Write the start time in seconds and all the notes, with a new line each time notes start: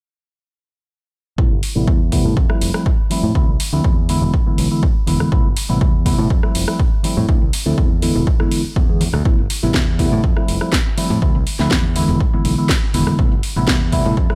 1.38 A1 C3 G3 A3 B3 E4, kick
1.51 G1
1.63 open hi-hat
1.75 A1 C3 G3 A3 B3 E4
1.88 E2, kick
2.12 C3 G3 A3 B3 E4, kick, open hi-hat
2.25 A2, high conga, low conga, shaker
2.37 F2, kick
2.49 F3 G3 A3 C4 E4, cross-stick
2.61 F1, open hi-hat
2.74 F3 G3 A3 C4 E4, cross-stick
2.86 kick
3.10 F3 G3 A3 C4 E4, muted fingered electric bass stroke, open hi-hat, high conga
3.23 A2, low conga, shaker
3.35 D2 D3 F3 A3 C4 E4, kick
3.48 C2, high conga, shaker
3.60 open hi-hat
3.72 D2 D3 F3 A3 C4 E4
3.84 E2, kick
4.09 D3 E3 G#3 B3 E4, open hi-hat
4.21 E1, high conga, low conga, shaker
4.34 kick
4.46 D3 E3 G#3 B3 E4, muted fingered electric bass stroke, low conga, shaker
4.58 B1, open hi-hat
4.71 D3 E3 G#3 B3 E4
4.83 kick
5.07 E1 D3 E3 G#3 B3 E4, open hi-hat, high conga
5.20 cross-stick, low conga, shaker
5.32 A1 C3 G3 A3 B3 E4, kick
5.45 G1, shaker
5.57 open hi-hat
5.69 A1 C3 G3 A3 B3 E4
5.81 E2, kick
6.05 C3 G3 A3 B3 E4, kick, open hi-hat
6.18 A2, high conga, low conga, shaker
6.30 F2, kick, shaker
6.43 F3 G3 A3 C4 E4, cross-stick
6.55 F1, open hi-hat
6.67 F3 G3 A3 C4 E4, cross-stick
6.80 kick
7.03 F3 G3 A3 C4 E4, muted fingered electric bass stroke, open hi-hat, high conga
7.16 A2, low conga, shaker
7.28 D2 D3 F3, kick
7.42 C2, high conga, shaker
7.53 open hi-hat
7.66 D2 D3 F3 A3 C4 E4
7.78 E2, kick
8.02 D3 E3 G#3 B3 E4, open hi-hat
8.15 E1, high conga, low conga, shaker
8.27 kick
8.39 D3 E3 G#3 B3 E4, cross-stick, low conga, shaker
8.52 open hi-hat
8.64 muted fingered electric bass stroke, shaker
8.76 E2, kick
8.89 D3 E3 G#3 B3 G#4
9.01 open hi-hat, high conga
9.13 D2, cross-stick, low conga, shaker
9.25 A1 C3 G3 A3 B3 E4, kick, shaker
9.38 G1, shaker
9.50 open hi-hat
9.62 A1 C3 G3 A3 B3 E4
9.74 E2, kick, snare
9.99 C3 G3 A3 B3 E4, kick, open hi-hat
10.12 A2, high conga, low conga, shaker
10.24 F2, kick
10.36 F3 G3 A3 C4 E4, cross-stick, shaker
10.48 F1, open hi-hat
10.61 F3 G3 A3 C4 E4, cross-stick, shaker
10.73 kick, snare
10.97 F3 G3 A3 C4 E4, muted fingered electric bass stroke, open hi-hat, high conga
11.10 A2, low conga, shaker
11.22 D2 D3 F3 A3 C4 E4, kick, shaker
11.34 C2, high conga, shaker
11.47 open hi-hat
11.59 D2 D3 F3 A3 C4 E4, snare
11.71 kick, snare
11.96 D3 E3 G#3 B3 E4, open hi-hat
12.08 E1, high conga, low conga, shaker
12.20 kick
12.33 D3 E3 G#3 B3 E4, muted fingered electric bass stroke, low conga, shaker
12.45 B1, open hi-hat
12.58 D3 E3 G#3 B3 E4, shaker
12.69 kick, snare
12.94 E1 D3 E3 G#3 B3 E4, open hi-hat, high conga
13.07 cross-stick, low conga, shaker
13.18 A1 C3 G3 A3 B3 E4, kick, shaker
13.32 G1, shaker
13.43 open hi-hat
13.56 A1 C3 G3 A3 B3 E4, shaker
13.68 E2, kick, snare
13.92 C3 G3 A3 B3 E4, kick, open hi-hat
14.05 A2, high conga, low conga, shaker
14.17 F2, kick, shaker
14.30 F3 G3 A3 C4 E4, cross-stick, shaker